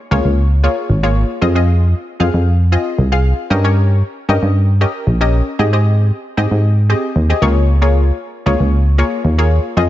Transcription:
0.11 fm bass C#2, synth pluck A#3 F4 G#4 C#5
0.25 fm bass C#2
0.64 synth pluck A#3 F4 G#4 C#5
0.90 fm bass G#1
1.03 synth pluck A#3 F4 G#4 C#5
1.41 fm bass F2, synth pluck C4 F4 G#4 D#5
1.55 synth pluck C4 F4 G#4 D#5
2.20 fm bass F2, synth pluck C4 F4 G#4 F5
2.34 fm bass F2
2.72 synth pluck C4 F4 G#4 D#5
2.99 fm bass C2
3.12 synth pluck C4 F4 G#4 F5
3.50 fm bass G2, synth pluck C#4 G4 A#4 D#5
3.64 synth pluck C#4 G4 A#4 C#5
4.29 fm bass G2, synth pluck C#4 G4 A#4 D#5
4.43 fm bass G2
4.81 synth pluck C#4 G4 A#4 D#5
5.07 fm bass A#1
5.21 synth pluck C#4 G4 A#4 D#5
5.59 fm bass G#2, synth pluck C4 G4 G#4 D#5
5.73 synth pluck C4 G4 G#4 D#5
6.37 fm bass G#2, synth pluck C4 G4 G#4 D#5
6.51 fm bass G#2
6.89 synth pluck C4 G4 G#4 D#5
7.16 fm bass D#2
7.30 synth pluck C4 G4 G#4 D#5
7.42 fm bass C#2, synth pluck A#3 F4 G#4 C#5
7.82 synth pluck A#3 F4 G#4 C#5
8.46 fm bass C#2, synth pluck A#3 F4 G#4 C#5
8.60 fm bass C#2
8.98 synth pluck A#3 F4 G#4 C#5
9.25 fm bass D#2
9.38 synth pluck A#3 F4 G#4 C#5
9.77 fm bass F2, synth pluck C4 F4 G#4 D#5

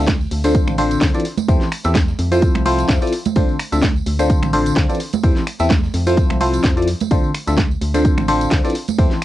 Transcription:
Already playing: fm bass D2
0.07 kick, snare, closed hi-hat, tambourine, high conga
0.21 tambourine
0.31 fm bass D2, closed hi-hat, open hi-hat
0.44 fm electric piano D3 C4 D4 F4 A4 C5, snare, closed hi-hat, tambourine
0.55 kick, closed hi-hat, tambourine
0.67 fm bass A1, finger snap, tambourine, high conga
0.78 fm electric piano D3 C4 D4 F4 A4 C5, closed hi-hat, open hi-hat
0.91 closed hi-hat, tambourine
1.01 fm bass D2, kick, snare, closed hi-hat, open hi-hat, tambourine
1.14 fm electric piano E3 C4 D4 F4 A4 D5, closed hi-hat, tambourine
1.20 closed hi-hat
1.25 snare, closed hi-hat, open hi-hat
1.38 closed hi-hat, tambourine, high conga
1.48 fm bass E2, fm electric piano E3 C4 E4 G4 A4 C5, kick, closed hi-hat, tambourine
1.61 snare, closed hi-hat, tambourine
1.72 finger snap, closed hi-hat, open hi-hat
1.84 fm bass E2, fm electric piano E3 C4 E4 G4 A4 E5, snare, closed hi-hat, tambourine
1.95 kick, snare, closed hi-hat, tambourine, high conga
2.08 snare, tambourine
2.19 fm bass F2, snare, closed hi-hat, open hi-hat
2.32 fm electric piano F3 C4 E4 F4 A4 C5, closed hi-hat, tambourine
2.42 kick, closed hi-hat, tambourine
2.55 fm bass C2, finger snap, tambourine, high conga
2.66 fm electric piano F3 C4 E4 F4 A4 C5, closed hi-hat, open hi-hat
2.79 closed hi-hat, tambourine
2.89 fm bass F2, kick, snare, closed hi-hat, tambourine
3.02 fm electric piano F3 C4 E4 F4 A4 D5, closed hi-hat, tambourine
3.07 closed hi-hat
3.12 snare, closed hi-hat, open hi-hat
3.25 closed hi-hat, tambourine, high conga
3.36 fm bass D2, fm electric piano D3 C4 D4 F4 A4 C5, kick, closed hi-hat, tambourine
3.49 tambourine
3.59 finger snap, closed hi-hat, open hi-hat
3.72 fm bass D2, fm electric piano D3 C4 D4 F4 A4 E5, snare, closed hi-hat, tambourine
3.82 kick, snare, closed hi-hat, tambourine, high conga
3.96 tambourine
4.06 fm bass D2, closed hi-hat, open hi-hat
4.19 fm electric piano D3 C4 D4 F4 A4 C5, snare, closed hi-hat, tambourine
4.30 kick, closed hi-hat, tambourine
4.43 fm bass A1, finger snap, tambourine, high conga
4.53 fm electric piano D3 C4 D4 F4 A4 C5, closed hi-hat, open hi-hat
4.66 closed hi-hat, tambourine
4.76 fm bass D2, kick, snare, closed hi-hat, open hi-hat
4.90 fm electric piano E3 C4 D4 F4 A4 D5, closed hi-hat, tambourine
4.95 closed hi-hat
5.00 snare, closed hi-hat, open hi-hat
5.13 closed hi-hat, tambourine, high conga
5.23 fm bass E2, fm electric piano E3 C4 E4 G4 A4 C5, kick, closed hi-hat, tambourine
5.36 snare, closed hi-hat, tambourine
5.47 finger snap, closed hi-hat, open hi-hat
5.59 fm bass E2, fm electric piano E3 C4 E4 G4 A4 E5, snare, closed hi-hat, tambourine
5.70 kick, snare, closed hi-hat, tambourine, high conga
5.83 snare, tambourine
5.94 fm bass F2, snare, closed hi-hat, open hi-hat
6.07 fm electric piano F3 C4 E4 F4 A4 C5, closed hi-hat, tambourine
6.17 kick, closed hi-hat, tambourine
6.30 fm bass C2, finger snap, tambourine, high conga
6.41 fm electric piano F3 C4 E4 F4 A4 C5, closed hi-hat, open hi-hat
6.54 closed hi-hat, tambourine
6.64 fm bass F2, kick, snare, closed hi-hat, tambourine
6.77 fm electric piano F3 C4 E4 F4 A4 D5, closed hi-hat, tambourine
6.82 closed hi-hat
6.88 snare, closed hi-hat, open hi-hat
7.00 closed hi-hat, tambourine, high conga
7.11 fm bass D2, fm electric piano D3 C4 D4 F4 A4 C5, kick, closed hi-hat, tambourine
7.24 tambourine
7.34 finger snap, closed hi-hat, open hi-hat
7.47 fm bass D2, fm electric piano D3 C4 D4 F4 A4 E5, snare, closed hi-hat, tambourine
7.57 kick, snare, closed hi-hat, tambourine, high conga
7.71 tambourine
7.81 fm bass D2, closed hi-hat, open hi-hat
7.94 fm electric piano D3 C4 D4 F4 A4 C5, snare, closed hi-hat, tambourine
8.05 kick, closed hi-hat, tambourine
8.18 fm bass A1, finger snap, tambourine, high conga
8.28 fm electric piano D3 C4 D4 F4 A4 C5, closed hi-hat, open hi-hat
8.41 closed hi-hat, tambourine
8.51 fm bass D2, kick, snare, closed hi-hat, open hi-hat, tambourine
8.65 fm electric piano E3 C4 D4 F4 A4 D5, closed hi-hat, tambourine
8.70 closed hi-hat
8.75 snare, closed hi-hat, open hi-hat
8.88 closed hi-hat, tambourine, high conga
8.98 fm bass E2, fm electric piano E3 C4 E4 G4 A4 C5, kick, closed hi-hat, tambourine
9.11 snare, closed hi-hat, tambourine

